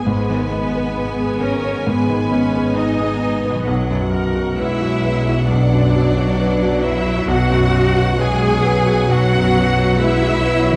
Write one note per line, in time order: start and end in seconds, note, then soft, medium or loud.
0.00 0.21 B3 soft
0.06 3.64 G#1 soft
0.06 1.84 G#2 soft
0.06 3.64 G#3 soft
0.06 0.51 G#3 medium
0.06 1.39 B3 medium
0.06 3.64 B3 medium
0.06 1.43 B4 soft
0.06 3.64 G#5 medium
0.29 0.66 D#3 soft
0.52 0.88 G#3 soft
0.52 0.95 B3 medium
0.75 1.11 B3 soft
0.96 1.42 B3 soft
0.96 1.33 B4 soft
1.20 1.56 G#4 soft
1.41 1.87 C#4 medium
1.41 1.87 A#4 medium
1.41 1.78 B4 soft
1.41 1.87 C#5 medium
1.64 2.01 B3 soft
1.86 3.64 G#2 soft
1.86 2.33 G#3 medium
1.86 2.78 B3 medium
1.86 2.77 B4 medium
2.09 2.46 D#3 soft
2.31 2.69 G#3 soft
2.31 2.77 C#4 medium
2.55 2.91 B3 soft
2.77 3.68 B3 medium
2.77 3.68 D#4 medium
2.77 3.14 B4 soft
2.77 3.68 D#5 medium
2.99 3.36 G#4 soft
3.23 3.59 B4 soft
3.45 7.39 B2 medium
3.45 3.68 B3 soft
3.54 7.44 F#3 soft
3.59 7.49 F#4 soft
3.63 7.53 B4 soft
3.67 5.46 B1 medium
3.67 7.26 B1 medium
3.67 4.13 F#3 medium
3.67 7.10 F#3 medium
3.67 7.10 B3 medium
3.67 7.24 F#5 medium
3.90 4.27 F#2 soft
4.13 4.50 F#3 soft
4.13 4.58 A#4 medium
4.35 4.72 F#4 soft
4.57 5.50 G#3 medium
4.57 5.46 E4 medium
4.57 4.96 B4 soft
4.57 5.45 E5 medium
4.82 5.19 F#4 soft
5.05 5.41 B4 soft
5.28 5.64 F#4 soft
5.48 7.25 B1 medium
5.48 8.17 F#3 medium
5.48 6.83 D4 medium
5.48 6.84 D5 medium
5.73 6.08 F#2 soft
5.96 6.31 F#3 soft
6.17 6.53 F#4 soft
6.40 6.75 B4 medium
6.62 6.97 F#4 soft
6.82 7.28 E4 medium
6.82 7.19 B4 soft
6.82 7.28 E5 medium
7.06 7.42 F#4 soft
7.27 9.04 B1 medium
7.27 10.76 B1 medium
7.27 10.76 F#3 medium
7.27 10.76 B3 medium
7.27 8.18 F#4 medium
7.27 10.76 F#5 medium
7.27 8.17 F#5 medium
7.51 7.87 F#2 soft
7.72 8.09 F#3 medium
7.96 8.32 F#4 medium
8.18 8.62 G#3 medium
8.18 9.09 G#4 medium
8.18 8.54 B4 medium
8.18 9.09 G#5 medium
8.40 8.77 F#4 soft
8.63 9.07 F#3 medium
8.63 9.00 B4 soft
8.86 9.22 F#4 medium
9.08 10.76 B1 medium
9.08 9.98 F#3 medium
9.08 9.98 F#4 medium
9.08 10.00 F#5 medium
9.33 9.69 F#2 soft
9.56 9.91 F#3 medium
9.78 10.14 F#4 medium
9.98 10.44 G#3 medium
9.98 10.76 E4 medium
9.98 10.36 B4 medium
9.98 10.76 E5 medium
10.22 10.58 F#4 medium
10.43 10.76 F#3 medium
10.43 10.76 B4 medium
10.66 10.76 F#4 soft
10.70 10.76 D#3 medium